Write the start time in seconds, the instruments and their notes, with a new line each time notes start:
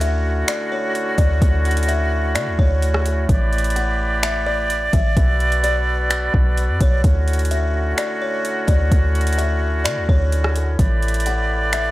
Already playing: 808-style bass D2, woodwind section D3 A3 C#4 E4 F#4
0.01 kalimba E5, closed hi-hat
0.48 kalimba D5, finger snap, closed hi-hat
0.72 kalimba C#5
0.95 closed hi-hat
1.18 808-style bass D2, kalimba D5, kick, closed hi-hat
1.42 808-style bass D2, kick, closed hi-hat
1.65 closed hi-hat
1.71 closed hi-hat
1.77 closed hi-hat
1.83 closed hi-hat
1.88 kalimba E5, closed hi-hat
2.35 808-style bass D3, kalimba D5, finger snap, closed hi-hat
2.47 808-style bass D2
2.59 808-style bass D2, kalimba C#5, kick
2.82 closed hi-hat
2.94 cross-stick
3.06 closed hi-hat
3.29 808-style bass A1, woodwind section G4 B4 D5, kick, closed hi-hat
3.53 closed hi-hat
3.58 closed hi-hat
3.64 closed hi-hat
3.70 closed hi-hat
3.76 kalimba F#5, closed hi-hat
4.23 kalimba E5, finger snap, closed hi-hat
4.46 kalimba D5
4.70 closed hi-hat
4.93 808-style bass A1, kalimba E5, kick, closed hi-hat
5.17 808-style bass B1, woodwind section B3 F#4 A4 B4, kick, closed hi-hat
5.40 closed hi-hat
5.52 closed hi-hat
5.63 kalimba D5, closed hi-hat
6.10 finger snap, closed hi-hat
6.34 808-style bass B1, kick
6.57 closed hi-hat
6.69 808-style bass F#2
6.81 808-style bass B1, kalimba C#5, kick, closed hi-hat
7.04 808-style bass D2, woodwind section D3 A3 C#4 E4 F#4, kick, closed hi-hat
7.28 closed hi-hat
7.33 closed hi-hat
7.39 closed hi-hat
7.45 closed hi-hat
7.51 kalimba E5, closed hi-hat
7.98 kalimba D5, finger snap, closed hi-hat
8.22 kalimba C#5
8.45 closed hi-hat
8.67 808-style bass D2, kalimba D5, kick, closed hi-hat
8.92 808-style bass D2, kick, closed hi-hat
9.15 closed hi-hat
9.21 closed hi-hat
9.27 closed hi-hat
9.33 closed hi-hat
9.38 kalimba E5, closed hi-hat
9.84 808-style bass D3, kalimba D5, finger snap, closed hi-hat
9.97 808-style bass D2
10.09 808-style bass D2, kalimba C#5, kick
10.32 closed hi-hat
10.44 cross-stick
10.56 closed hi-hat
10.79 808-style bass A1, woodwind section A3 G4 B4 D5, kick, closed hi-hat
11.02 closed hi-hat
11.08 closed hi-hat
11.14 closed hi-hat
11.20 closed hi-hat
11.26 kalimba F#5, closed hi-hat
11.73 kalimba E5, finger snap, closed hi-hat